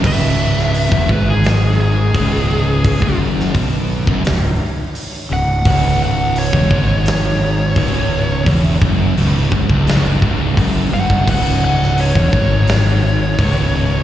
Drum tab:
CC |x---------------|----------------|----------------|----------------|
HH |----o---o---o---|o---o---o---o---|o---o---o---o---|o---o---o---o---|
SD |---o----o-------|---o----o-------|--------o-------|--------o-------|
BD |o----oo-----o---|oo--o--o--------|o----oo-----o---|o-o---oo--o-o--o|

CC |x---------------|
HH |----o---o---o---|
SD |---o----o-------|
BD |o----oo-----o---|